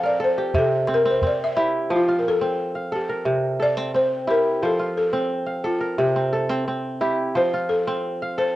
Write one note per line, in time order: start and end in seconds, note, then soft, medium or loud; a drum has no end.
0.00 0.60 F3 medium
0.00 0.88 C4 medium
0.00 0.88 F4 medium
0.00 0.26 G4 medium
0.00 0.19 A4 medium
0.00 1.31 A#4 medium
0.00 0.37 C5 medium
0.06 0.13 D5 medium
0.20 1.52 A4 medium
0.20 calabash click soft
0.24 0.58 C5 medium
0.38 1.56 G4 medium
0.38 calabash click soft
0.54 1.96 C3 medium
0.54 calabash thump medium
0.58 0.88 A4 medium
0.87 1.05 C4 medium
0.87 calabash click medium
0.94 1.08 A#4 medium
1.05 1.22 C4 medium
1.10 1.25 C5 medium
1.22 2.41 C4 medium
1.22 calabash thump medium
1.27 1.34 D5 medium
1.44 1.89 E5 loud
1.56 1.96 E4 medium
1.56 2.98 G4 medium
1.56 calabash click soft
1.90 3.32 F3 medium
1.90 3.09 C5 medium
1.96 2.21 F4 medium
2.08 3.60 F4 soft
2.19 2.25 A#4 medium
2.28 2.96 A4 medium
2.41 3.77 C4 medium
2.75 3.75 F5 soft
2.92 3.64 G4 medium
2.92 3.59 A4 medium
3.09 3.66 A#4 medium
3.25 4.68 C3 medium
3.60 4.91 A4 medium
3.60 3.97 D5 loud
3.77 3.94 C4 medium
3.94 5.12 C4 medium
3.94 4.31 C5 medium
4.27 4.69 E4 medium
4.27 5.69 G4 medium
4.27 4.65 A#4 medium
4.62 6.05 F3 medium
4.62 4.96 A4 medium
4.62 5.81 C5 medium
4.79 6.31 F4 soft
4.97 5.68 A4 medium
5.13 6.16 C4 medium
5.46 6.46 F5 soft
5.64 6.01 F4 medium
5.64 6.32 A4 medium
5.81 6.39 A#4 medium
5.98 7.42 C3 medium
5.98 6.99 G4 medium
6.16 6.49 C4 medium
6.33 7.64 A4 medium
6.50 6.67 C4 medium
6.68 7.87 C4 medium
7.01 7.41 E4 medium
7.01 8.42 G4 medium
7.35 8.56 F3 medium
7.35 8.54 C5 medium
7.35 7.72 C5 medium
7.54 8.56 F4 medium
7.69 8.41 A4 medium
7.87 8.56 C4 medium
8.22 8.56 F5 medium
8.38 8.56 A4 medium
8.38 8.56 C5 medium